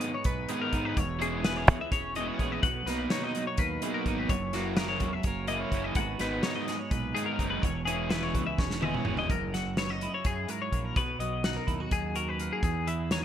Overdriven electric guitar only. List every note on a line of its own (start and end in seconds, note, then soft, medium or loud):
0.49 0.72 D#3 medium
0.49 0.72 G#3 medium
0.49 0.72 B3 loud
0.49 0.73 D#4 medium
0.73 0.97 D#3 medium
0.73 0.97 G#3 medium
0.73 0.97 B3 medium
0.73 0.97 D#4 medium
1.20 1.43 E3 medium
1.20 1.43 G#3 medium
1.20 1.43 B3 medium
1.20 1.44 E4 medium
1.44 1.75 E3 medium
1.44 1.76 G#3 medium
1.44 1.76 B3 medium
1.44 1.76 E4 medium
2.16 2.38 E3 medium
2.16 2.38 G#3 medium
2.16 2.39 B3 medium
2.16 2.39 E4 medium
2.39 2.63 E3 medium
2.39 2.63 G#3 medium
2.39 2.64 B3 medium
2.39 2.64 E4 medium
2.87 3.10 B2 medium
2.87 3.11 F#3 medium
2.87 3.11 B3 medium
2.87 3.11 D#4 medium
3.11 3.42 B2 medium
3.11 3.43 F#3 medium
3.11 3.42 B3 medium
3.11 3.43 D#4 medium
3.83 4.06 B2 medium
3.83 4.06 F#3 medium
3.83 4.07 B3 medium
3.83 4.06 D#4 medium
4.07 4.31 B2 medium
4.07 4.31 F#3 medium
4.07 4.31 B3 medium
4.07 4.31 D#4 medium
4.54 4.76 C#3 medium
4.54 4.77 E3 medium
4.54 4.77 A#3 medium
4.54 4.78 E4 medium
4.77 5.09 C#3 medium
4.77 5.09 E3 medium
4.77 5.09 A#3 medium
4.77 5.09 E4 medium
5.48 5.70 C#3 medium
5.48 5.71 E3 medium
5.48 5.71 A#3 medium
5.48 5.72 E4 medium
5.72 5.96 C#3 medium
5.72 5.97 E3 medium
5.72 5.97 A#3 medium
5.72 5.97 E4 medium
6.20 6.42 D#3 medium
6.20 6.42 G#3 medium
6.20 6.43 B3 medium
6.20 6.43 D#4 medium
6.44 6.75 D#3 medium
6.44 6.75 G#3 medium
6.44 6.75 B3 medium
6.44 6.75 D#4 medium
7.15 7.39 D#3 medium
7.15 7.39 G#3 medium
7.15 7.39 B3 medium
7.15 7.39 D#4 loud
7.40 7.63 D#3 medium
7.40 7.64 G#3 medium
7.40 7.64 B3 medium
7.40 7.64 D#4 medium
7.88 8.09 E3 medium
7.88 8.09 G#3 medium
7.88 8.10 B3 medium
7.88 8.10 E4 medium
8.10 8.41 E3 medium
8.10 8.42 G#3 medium
8.10 8.42 B3 medium
8.10 8.42 E4 medium
8.81 9.04 E3 medium
8.81 9.04 G#3 medium
8.81 9.04 B3 medium
8.81 9.05 E4 medium
9.05 9.29 E3 medium
9.05 9.29 G#3 medium
9.05 9.30 B3 medium
9.05 9.30 E4 medium